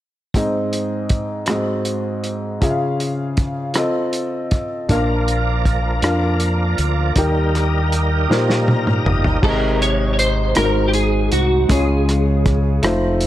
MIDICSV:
0, 0, Header, 1, 6, 480
1, 0, Start_track
1, 0, Key_signature, -4, "major"
1, 0, Tempo, 756620
1, 221, Time_signature, 6, 3, 24, 8
1, 8418, End_track
2, 0, Start_track
2, 0, Title_t, "Clean electric guitar"
2, 0, Program_c, 0, 27
2, 5991, Note_on_c, 0, 70, 76
2, 6228, Note_off_c, 0, 70, 0
2, 6231, Note_on_c, 0, 73, 86
2, 6420, Note_off_c, 0, 73, 0
2, 6427, Note_on_c, 0, 73, 58
2, 6460, Note_off_c, 0, 73, 0
2, 6463, Note_on_c, 0, 72, 78
2, 6701, Note_off_c, 0, 72, 0
2, 6703, Note_on_c, 0, 70, 72
2, 6900, Note_on_c, 0, 67, 56
2, 6904, Note_off_c, 0, 70, 0
2, 6937, Note_off_c, 0, 67, 0
2, 6939, Note_on_c, 0, 68, 72
2, 7181, Note_off_c, 0, 68, 0
2, 7184, Note_on_c, 0, 66, 64
2, 7425, Note_off_c, 0, 66, 0
2, 7427, Note_on_c, 0, 68, 60
2, 8117, Note_off_c, 0, 68, 0
2, 8418, End_track
3, 0, Start_track
3, 0, Title_t, "Grand piano"
3, 0, Program_c, 1, 0
3, 218, Note_on_c, 1, 60, 55
3, 223, Note_on_c, 1, 63, 54
3, 225, Note_on_c, 1, 44, 47
3, 228, Note_on_c, 1, 68, 49
3, 232, Note_on_c, 1, 75, 62
3, 350, Control_c, 1, 64, 127
3, 786, Note_off_c, 1, 60, 0
3, 788, Note_off_c, 1, 63, 0
3, 790, Note_off_c, 1, 68, 0
3, 793, Note_off_c, 1, 75, 0
3, 919, Note_off_c, 1, 44, 0
3, 940, Note_on_c, 1, 60, 53
3, 942, Note_on_c, 1, 66, 46
3, 947, Note_on_c, 1, 68, 47
3, 948, Note_on_c, 1, 44, 50
3, 950, Control_c, 1, 64, 0
3, 953, Note_on_c, 1, 75, 58
3, 1062, Control_c, 1, 64, 127
3, 1507, Note_off_c, 1, 60, 0
3, 1508, Note_off_c, 1, 66, 0
3, 1511, Note_off_c, 1, 68, 0
3, 1514, Note_off_c, 1, 75, 0
3, 1642, Note_off_c, 1, 44, 0
3, 1655, Note_on_c, 1, 61, 57
3, 1659, Note_on_c, 1, 65, 57
3, 1661, Note_on_c, 1, 49, 48
3, 1665, Note_on_c, 1, 68, 55
3, 1672, Note_on_c, 1, 76, 57
3, 1674, Control_c, 1, 64, 0
3, 1710, Note_off_c, 1, 76, 0
3, 1710, Note_on_c, 1, 77, 67
3, 1770, Control_c, 1, 64, 127
3, 2225, Note_off_c, 1, 61, 0
3, 2227, Note_off_c, 1, 65, 0
3, 2230, Note_off_c, 1, 68, 0
3, 2253, Note_off_c, 1, 77, 0
3, 2359, Note_off_c, 1, 49, 0
3, 2379, Note_on_c, 1, 60, 55
3, 2383, Note_on_c, 1, 65, 51
3, 2387, Note_on_c, 1, 69, 54
3, 2390, Note_on_c, 1, 75, 61
3, 2395, Control_c, 1, 64, 0
3, 2506, Control_c, 1, 64, 127
3, 2948, Note_off_c, 1, 60, 0
3, 2949, Note_off_c, 1, 65, 0
3, 2951, Note_off_c, 1, 69, 0
3, 2953, Note_off_c, 1, 75, 0
3, 3099, Note_on_c, 1, 62, 63
3, 3109, Note_on_c, 1, 65, 57
3, 3111, Note_on_c, 1, 46, 51
3, 3111, Note_on_c, 1, 70, 58
3, 3115, Control_c, 1, 64, 0
3, 3115, Note_on_c, 1, 77, 68
3, 3229, Control_c, 1, 64, 127
3, 3668, Note_off_c, 1, 62, 0
3, 3673, Note_off_c, 1, 65, 0
3, 3673, Note_off_c, 1, 70, 0
3, 3676, Note_off_c, 1, 77, 0
3, 3804, Note_off_c, 1, 46, 0
3, 3826, Note_on_c, 1, 62, 55
3, 3829, Note_on_c, 1, 65, 52
3, 3835, Note_on_c, 1, 70, 49
3, 3838, Note_on_c, 1, 77, 61
3, 4391, Note_off_c, 1, 62, 0
3, 4393, Note_off_c, 1, 65, 0
3, 4396, Note_off_c, 1, 70, 0
3, 4397, Note_off_c, 1, 77, 0
3, 4545, Note_on_c, 1, 63, 64
3, 4548, Note_on_c, 1, 67, 55
3, 4555, Control_c, 1, 64, 0
3, 4555, Note_on_c, 1, 51, 50
3, 4555, Note_on_c, 1, 70, 56
3, 4558, Note_on_c, 1, 79, 70
3, 4684, Control_c, 1, 64, 127
3, 5110, Note_off_c, 1, 63, 0
3, 5111, Note_off_c, 1, 67, 0
3, 5115, Note_off_c, 1, 70, 0
3, 5117, Note_off_c, 1, 79, 0
3, 5245, Note_off_c, 1, 51, 0
3, 5256, Note_on_c, 1, 63, 61
3, 5261, Note_on_c, 1, 65, 41
3, 5268, Note_on_c, 1, 70, 53
3, 5270, Note_on_c, 1, 72, 64
3, 5305, Note_off_c, 1, 65, 0
3, 5305, Note_on_c, 1, 67, 51
3, 5825, Note_off_c, 1, 63, 0
3, 5831, Note_off_c, 1, 70, 0
3, 5832, Note_off_c, 1, 72, 0
3, 5849, Note_off_c, 1, 67, 0
3, 5976, Note_on_c, 1, 48, 57
3, 5980, Note_on_c, 1, 44, 46
3, 5983, Note_on_c, 1, 63, 53
3, 5985, Note_on_c, 1, 68, 54
3, 5988, Note_on_c, 1, 75, 67
3, 5995, Control_c, 1, 64, 0
3, 6104, Control_c, 1, 64, 127
3, 6544, Note_off_c, 1, 48, 0
3, 6547, Note_off_c, 1, 63, 0
3, 6548, Note_off_c, 1, 68, 0
3, 6550, Note_off_c, 1, 75, 0
3, 6676, Note_off_c, 1, 44, 0
3, 6698, Note_on_c, 1, 56, 51
3, 6702, Note_on_c, 1, 63, 50
3, 6705, Note_on_c, 1, 44, 50
3, 6707, Note_on_c, 1, 66, 51
3, 6708, Note_on_c, 1, 70, 49
3, 6712, Control_c, 1, 64, 0
3, 6747, Note_off_c, 1, 70, 0
3, 6750, Note_on_c, 1, 72, 59
3, 6824, Control_c, 1, 64, 127
3, 7264, Note_off_c, 1, 56, 0
3, 7266, Note_off_c, 1, 63, 0
3, 7268, Note_off_c, 1, 66, 0
3, 7290, Note_off_c, 1, 72, 0
3, 7397, Note_off_c, 1, 44, 0
3, 7415, Note_on_c, 1, 56, 62
3, 7420, Note_on_c, 1, 61, 55
3, 7421, Note_on_c, 1, 49, 51
3, 7425, Note_on_c, 1, 65, 55
3, 7427, Note_on_c, 1, 73, 66
3, 7431, Control_c, 1, 64, 0
3, 7556, Control_c, 1, 64, 127
3, 7981, Note_off_c, 1, 56, 0
3, 7983, Note_off_c, 1, 61, 0
3, 7986, Note_off_c, 1, 65, 0
3, 7987, Note_off_c, 1, 73, 0
3, 8114, Note_off_c, 1, 49, 0
3, 8135, Note_on_c, 1, 57, 70
3, 8142, Note_on_c, 1, 63, 61
3, 8147, Control_c, 1, 64, 0
3, 8147, Note_on_c, 1, 65, 61
3, 8151, Note_on_c, 1, 72, 68
3, 8241, Control_c, 1, 64, 127
3, 8418, Note_off_c, 1, 57, 0
3, 8418, Note_off_c, 1, 63, 0
3, 8418, Note_off_c, 1, 65, 0
3, 8418, Note_off_c, 1, 72, 0
3, 8418, End_track
4, 0, Start_track
4, 0, Title_t, "Tonewheel organ"
4, 0, Program_c, 2, 16
4, 3112, Note_on_c, 2, 58, 49
4, 3113, Note_on_c, 2, 53, 57
4, 3114, Note_on_c, 2, 61, 41
4, 3117, Note_on_c, 2, 70, 57
4, 3152, Note_off_c, 2, 61, 0
4, 3155, Note_on_c, 2, 62, 49
4, 4524, Note_off_c, 2, 58, 0
4, 4525, Note_off_c, 2, 53, 0
4, 4527, Note_off_c, 2, 70, 0
4, 4542, Note_on_c, 2, 55, 59
4, 4543, Note_on_c, 2, 69, 48
4, 4544, Note_on_c, 2, 63, 50
4, 4545, Note_on_c, 2, 58, 51
4, 4546, Note_off_c, 2, 62, 0
4, 4583, Note_on_c, 2, 70, 64
4, 4586, Note_off_c, 2, 69, 0
4, 5504, Note_on_c, 2, 82, 50
4, 5728, Note_off_c, 2, 82, 0
4, 5737, Note_on_c, 2, 75, 51
4, 5958, Note_off_c, 2, 55, 0
4, 5958, Note_off_c, 2, 63, 0
4, 5959, Note_off_c, 2, 58, 0
4, 5964, Note_off_c, 2, 75, 0
4, 5978, Note_off_c, 2, 70, 0
4, 8418, End_track
5, 0, Start_track
5, 0, Title_t, "Fingered electric bass"
5, 0, Program_c, 3, 33
5, 3103, Note_on_c, 3, 34, 74
5, 3800, Note_off_c, 3, 34, 0
5, 3822, Note_on_c, 3, 41, 71
5, 4279, Note_off_c, 3, 41, 0
5, 4306, Note_on_c, 3, 38, 68
5, 4527, Note_off_c, 3, 38, 0
5, 4541, Note_on_c, 3, 39, 78
5, 5238, Note_off_c, 3, 39, 0
5, 5268, Note_on_c, 3, 46, 72
5, 5721, Note_off_c, 3, 46, 0
5, 5745, Note_on_c, 3, 31, 74
5, 5966, Note_off_c, 3, 31, 0
5, 5985, Note_on_c, 3, 32, 72
5, 6678, Note_off_c, 3, 32, 0
5, 6706, Note_on_c, 3, 32, 74
5, 7158, Note_off_c, 3, 32, 0
5, 7183, Note_on_c, 3, 36, 67
5, 7403, Note_off_c, 3, 36, 0
5, 7418, Note_on_c, 3, 37, 79
5, 8112, Note_off_c, 3, 37, 0
5, 8140, Note_on_c, 3, 29, 87
5, 8418, Note_off_c, 3, 29, 0
5, 8418, End_track
6, 0, Start_track
6, 0, Title_t, "Drums"
6, 217, Note_on_c, 9, 36, 72
6, 219, Note_on_c, 9, 42, 62
6, 281, Note_off_c, 9, 36, 0
6, 283, Note_off_c, 9, 42, 0
6, 462, Note_on_c, 9, 42, 36
6, 525, Note_off_c, 9, 42, 0
6, 694, Note_on_c, 9, 42, 38
6, 699, Note_on_c, 9, 36, 59
6, 758, Note_off_c, 9, 42, 0
6, 762, Note_off_c, 9, 36, 0
6, 927, Note_on_c, 9, 42, 57
6, 937, Note_on_c, 9, 37, 73
6, 990, Note_off_c, 9, 42, 0
6, 1000, Note_off_c, 9, 37, 0
6, 1174, Note_on_c, 9, 42, 40
6, 1237, Note_off_c, 9, 42, 0
6, 1419, Note_on_c, 9, 42, 39
6, 1482, Note_off_c, 9, 42, 0
6, 1660, Note_on_c, 9, 42, 64
6, 1661, Note_on_c, 9, 36, 73
6, 1724, Note_off_c, 9, 36, 0
6, 1724, Note_off_c, 9, 42, 0
6, 1904, Note_on_c, 9, 42, 36
6, 1967, Note_off_c, 9, 42, 0
6, 2138, Note_on_c, 9, 42, 38
6, 2142, Note_on_c, 9, 36, 69
6, 2201, Note_off_c, 9, 42, 0
6, 2205, Note_off_c, 9, 36, 0
6, 2372, Note_on_c, 9, 42, 57
6, 2382, Note_on_c, 9, 37, 70
6, 2436, Note_off_c, 9, 42, 0
6, 2446, Note_off_c, 9, 37, 0
6, 2619, Note_on_c, 9, 42, 41
6, 2682, Note_off_c, 9, 42, 0
6, 2862, Note_on_c, 9, 42, 39
6, 2866, Note_on_c, 9, 36, 64
6, 2925, Note_off_c, 9, 42, 0
6, 2929, Note_off_c, 9, 36, 0
6, 3104, Note_on_c, 9, 36, 76
6, 3104, Note_on_c, 9, 42, 65
6, 3167, Note_off_c, 9, 42, 0
6, 3168, Note_off_c, 9, 36, 0
6, 3349, Note_on_c, 9, 42, 36
6, 3412, Note_off_c, 9, 42, 0
6, 3587, Note_on_c, 9, 36, 64
6, 3588, Note_on_c, 9, 42, 39
6, 3594, Note_on_c, 9, 37, 23
6, 3650, Note_off_c, 9, 36, 0
6, 3652, Note_off_c, 9, 42, 0
6, 3657, Note_off_c, 9, 37, 0
6, 3821, Note_on_c, 9, 42, 54
6, 3832, Note_on_c, 9, 37, 74
6, 3885, Note_off_c, 9, 42, 0
6, 3895, Note_off_c, 9, 37, 0
6, 4059, Note_on_c, 9, 42, 42
6, 4122, Note_off_c, 9, 42, 0
6, 4302, Note_on_c, 9, 42, 42
6, 4365, Note_off_c, 9, 42, 0
6, 4540, Note_on_c, 9, 42, 68
6, 4542, Note_on_c, 9, 36, 75
6, 4603, Note_off_c, 9, 42, 0
6, 4606, Note_off_c, 9, 36, 0
6, 4791, Note_on_c, 9, 37, 26
6, 4791, Note_on_c, 9, 42, 39
6, 4854, Note_off_c, 9, 37, 0
6, 4854, Note_off_c, 9, 42, 0
6, 5027, Note_on_c, 9, 42, 40
6, 5090, Note_off_c, 9, 42, 0
6, 5273, Note_on_c, 9, 38, 41
6, 5336, Note_off_c, 9, 38, 0
6, 5390, Note_on_c, 9, 38, 37
6, 5454, Note_off_c, 9, 38, 0
6, 5507, Note_on_c, 9, 48, 49
6, 5570, Note_off_c, 9, 48, 0
6, 5628, Note_on_c, 9, 47, 48
6, 5691, Note_off_c, 9, 47, 0
6, 5750, Note_on_c, 9, 45, 70
6, 5813, Note_off_c, 9, 45, 0
6, 5864, Note_on_c, 9, 43, 62
6, 5928, Note_off_c, 9, 43, 0
6, 5983, Note_on_c, 9, 36, 85
6, 5986, Note_on_c, 9, 49, 68
6, 6046, Note_off_c, 9, 36, 0
6, 6049, Note_off_c, 9, 49, 0
6, 6229, Note_on_c, 9, 42, 41
6, 6292, Note_off_c, 9, 42, 0
6, 6465, Note_on_c, 9, 42, 46
6, 6528, Note_off_c, 9, 42, 0
6, 6693, Note_on_c, 9, 42, 63
6, 6703, Note_on_c, 9, 37, 85
6, 6757, Note_off_c, 9, 42, 0
6, 6767, Note_off_c, 9, 37, 0
6, 6937, Note_on_c, 9, 42, 48
6, 7000, Note_off_c, 9, 42, 0
6, 7179, Note_on_c, 9, 42, 43
6, 7242, Note_off_c, 9, 42, 0
6, 7419, Note_on_c, 9, 42, 76
6, 7421, Note_on_c, 9, 36, 83
6, 7482, Note_off_c, 9, 42, 0
6, 7484, Note_off_c, 9, 36, 0
6, 7669, Note_on_c, 9, 37, 30
6, 7669, Note_on_c, 9, 42, 42
6, 7732, Note_off_c, 9, 42, 0
6, 7733, Note_off_c, 9, 37, 0
6, 7902, Note_on_c, 9, 42, 41
6, 7903, Note_on_c, 9, 36, 79
6, 7966, Note_off_c, 9, 42, 0
6, 7967, Note_off_c, 9, 36, 0
6, 8138, Note_on_c, 9, 42, 63
6, 8149, Note_on_c, 9, 37, 81
6, 8202, Note_off_c, 9, 42, 0
6, 8212, Note_off_c, 9, 37, 0
6, 8378, Note_on_c, 9, 42, 45
6, 8418, Note_off_c, 9, 42, 0
6, 8418, End_track
0, 0, End_of_file